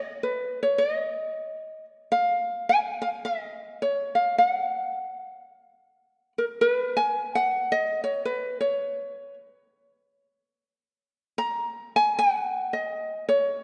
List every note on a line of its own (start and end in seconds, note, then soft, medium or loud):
0.23 0.62 B4 medium
0.63 0.78 C#5 medium
0.78 1.85 D#5 medium
2.12 2.69 F5 medium
2.69 2.78 G#5 medium
3.02 3.08 F5 medium
3.25 3.81 D#5 medium
3.82 4.14 C#5 medium
4.15 4.37 F5 medium
4.38 6.32 F#5 medium
6.38 6.44 A#4 medium
6.61 6.97 B4 loud
6.97 7.34 G#5 medium
7.35 7.72 F#5 medium
7.72 8.03 D#5 loud
8.04 8.25 C#5 medium
8.25 8.58 B4 medium
8.61 9.33 C#5 medium
11.38 11.94 A#5 loud
11.96 12.17 G#5 loud
12.19 12.74 F#5 loud
12.73 13.28 D#5 medium
13.29 13.64 C#5 medium